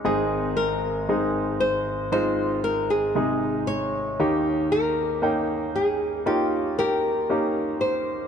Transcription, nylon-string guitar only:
\new Staff \with { instrumentName = "Nylon-string guitar" } { \time 4/4 \key aes \major \tempo 4 = 58 aes'8 bes'4 c''8 c''8 bes'16 aes'8. des''8~ | des''8 bes'4 aes'8 g'8 <g' bes'>4 c''8 | }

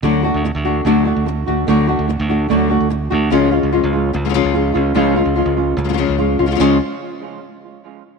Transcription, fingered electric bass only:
\new Staff \with { instrumentName = "Fingered electric bass" } { \clef bass \time 4/4 \tempo 4 = 146 d,8. d,8 d,8. d,8. d,8. d,8 | d,8. d,8 d,8. d,8. d,8. d,8 | cis,8. cis,8 cis,8. cis,8. cis,8. cis,8 | cis,8. cis,8 cis,8. cis,8. cis,8. cis,8 |
cis,8 r2. r8 | }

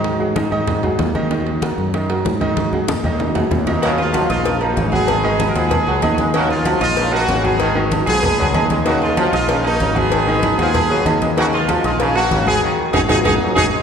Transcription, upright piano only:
\new Staff \with { instrumentName = "Upright piano" } { \time 4/4 \key ees \minor \tempo 4 = 191 <ees ees' ees''>8 <ges ges' aes'>8 <ees ees' ees''>8 <ees ees' ees''>4 <ges ges' aes'>4 <ees ees' ees''>8 | <ees ees' ees''>4 <ges ges' bes'>4 <ees ees' ees''>8 <ges ges' bes'>4 <ees ees' ees''>8~ | <ees ees' ees''>8 <ges ges' aes'>8 <ees ees' ees''>8 <ees ees' ees''>4 <ges ges' aes'>4 <ees ees' ees''>8 | <ees ees' ees''>4 <ges ges' ges''>8 <ees' ees'' ees'''>4 <bes bes' bes''>4 <ges ges' ges''>8~ |
<ges ges' ges''>8 <ees ees' ees''>4 <aes aes' ges''>4 <aes aes' aes''>8 <ees ees' ees''>4 | <ees ees' ees''>4 <ges ges' ges''>8 <ees' ees'' ees'''>4 <bes bes' bes''>4 <ges ges' ges''>8~ | <ges ges' ges''>8 <ees ees' ees''>4 <aes aes' ges''>4 <aes aes' aes''>8 <ees ees' ees''>4 | <ees ees' ees''>4 <ges ges' ges''>8 <ees' ees'' ees'''>4 <bes bes' bes''>4 <ges ges' ges''>8~ |
<ges ges' ges''>8 <ees ees' ees''>4 <aes aes' ges''>4 <aes aes' aes''>8 <ees ees' ees''>4 | <ees ees' ees''>4 <ges ges' ges''>8 <ees' ees'' ees'''>4 <bes bes' bes''>4 <ges ges' ges''>8 | r4 <ees' ges' aes'>8 <ees' ges' aes'>8 <ees' ges' aes'>8 r8 <ees' ges' aes'>8 r8 | }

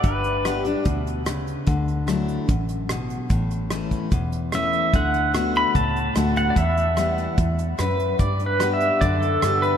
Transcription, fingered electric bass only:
\new Staff \with { instrumentName = "Fingered electric bass" } { \clef bass \time 4/4 \key d \major \tempo 4 = 147 g,,2 d,2 | d,2 a,,2 | a,,2 e,,2 | d,2 cis,4 d,4 |
e,2 e,4 fis,4 | g,2 fis,4 g,4 | }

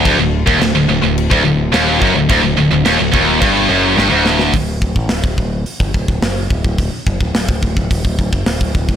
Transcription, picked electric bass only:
\new Staff \with { instrumentName = "Picked electric bass" } { \clef bass \time 4/4 \tempo 4 = 107 d,,16 d,,8 ees,,16 d,,16 d,,16 d,,16 d,,8 d,,16 d,,8 ees,,8 fis,,16 d,,16 | d,,16 d,,16 d,,16 d,,16 ees,,16 d,,16 ees,,8 g,,8 fis,,8 g,,16 d,,8. | d,,8 d,,16 a,,16 d,,16 d,,16 d,,8 r16 g,,16 d,,16 d,,16 fis,,8 d,,16 d,,16 | d,,16 r16 fis,,16 d,,16 d,,16 d,,16 d,,16 d,,16 ees,,16 d,,16 d,,16 fis,,16 d,,16 d,,16 d,,16 d,,16 | }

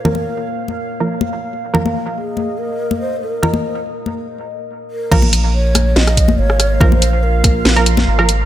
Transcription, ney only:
\new Staff \with { instrumentName = "Ney" } { \time 4/4 \key bes \minor \tempo 4 = 142 bes'4 r2. | r4 aes'4 bes'4 c''8 bes'8~ | bes'4 r2 r8 bes'8~ | bes'8 r8 des''4 ees''4 des''4 |
c''4 bes'2~ bes'8 r8 | }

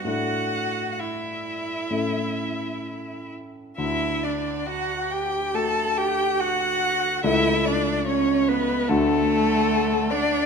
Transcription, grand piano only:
\new Staff \with { instrumentName = "Grand piano" } { \time 4/4 \key d \major \tempo 4 = 70 <a, a d' a'>2 <a, a cis' a'>2 | d,2 <a fis' a'>2 | <cis, a e' a'>2 <d, a d' fis'>2 | }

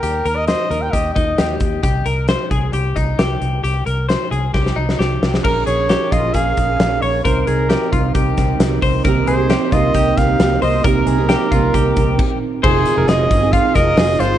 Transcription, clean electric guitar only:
\new Staff \with { instrumentName = "Clean electric guitar" } { \time 4/4 \key c \phrygian \tempo 4 = 133 g'8 bes'8 c''8 bes'8 g'8 ees'8 g'4 | g'8 bes'8 c''8 aes'8 g'8 ees'8 g'4 | g'8 bes'8 c''8 aes'8 g'8 ees'8 g'4 | \key f \minor bes'8 aes'8 g'8 f'8 aes'4. des''8 |
bes'8 aes'8 g'8 f'8 g'4. c''8 | bes'8 aes'8 g'8 f'8 g'4. c''8 | bes'8 aes'8 g'8 f'8 g'4. r8 | c''8. bes'16 aes'4 f'8 bes'8 aes'8 f'8 | }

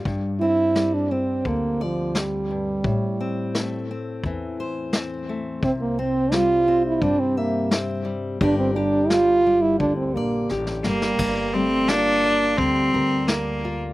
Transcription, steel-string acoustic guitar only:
\new Staff \with { instrumentName = "Steel-string acoustic guitar" } { \time 4/4 \key g \dorian \tempo 4 = 86 << { g8 c'4 c'4 d''4. | r8 c'4 c'4 c''8 c'4~ | c'8 c'4 c'4 e''8 c'4 | <g g' bes' d''>8 g'4 g4 d''8 g'4 |
r4 f'8 d''4 bes'8 d''8 f'8 | } \\ { g,4 g4 d4. g,8 | a,4 a4 e4. a8 | c4 g4 g4. g8 | g,4 g8 r8 d4. g8 |
g,8 g4. d2 | } >> }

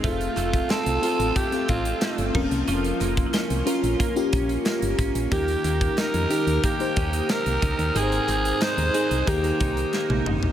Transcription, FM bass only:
\new Staff \with { instrumentName = "FM bass" } { \clef bass \time 4/4 \key ees \mixolydian \tempo 4 = 91 f,,8 f,,8 r16 c,16 r16 a,,16 r8 a,,8 r16 g,,16 f,,16 c,16 | f,,8 f,,8 r16 c,16 r16 bes,,16 r8 bes,,8 r16 g,,16 aes,,16 bes,,16 | ees,8 ees,8 r16 f,16 r16 ees,16 r8 ees,8 r16 c,16 des,16 ees,16 | aes,,8 aes,,8 r16 ees,16 r16 c,16 ees,8 c,8 r16 bes,,16 aes,,16 bes,,16 | }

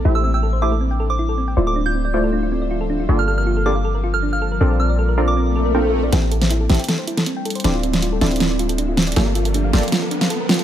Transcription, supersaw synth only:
\new Staff \with { instrumentName = "Supersaw synth" } { \time 4/4 \key d \minor \tempo 4 = 158 <a e' g' c'' e''>4. <a e' g' c'' e''>16 r2 r16 | <a e' f' c'' d''>4. <a e' f' c'' d''>2~ <a e' f' c'' d''>8 | <bes f' g' a' d''>4. <bes f' g' a' d''>16 r2 r16 | <c' f' a' bes' d''>4. <c' f' a' bes' d''>4. <c' f' a' bes' g''>4 |
<c' e' g' a' e''>4. <c' e' g' a' e''>16 r2 r16 | <c' e' f' a' d''>4. <c' e' f' a' d''>2~ <c' e' f' a' d''>8 | <bes f' g' a' d''>4. <bes f' g' a' d''>16 r2 r16 | }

